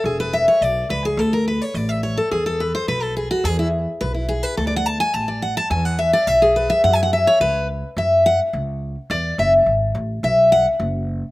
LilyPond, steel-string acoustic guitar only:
\new Staff \with { instrumentName = "Steel-string acoustic guitar" } { \time 4/4 \key e \mixolydian \tempo 4 = 212 gis'8 b'8 e''8 cis''8 d''4 b'8 gis'8 | a'8 bes'8 b'8 cis''8 d''8 e''8 cis''8 a'8 | gis'8 a'8 b'8 c''8 b'8 a'8 gis'8 fis'8 | gis'8 e'8 r4 b'8 e'8 gis'8 b'8 |
\tuplet 3/2 { a'8 d''8 fis''8 } a''8 gis''8 a''8 d''8 fis''8 a''8 | gis''8 fis''8 e''8 d''8 e''8 gis'8 b'8 e''8 | \tuplet 3/2 { fis''8 gis''8 fis''8 } e''8 cis''8 b'4 r4 | e''4 fis''8 r2 r8 |
d''4 e''8 r2 r8 | e''4 fis''8 r2 r8 | }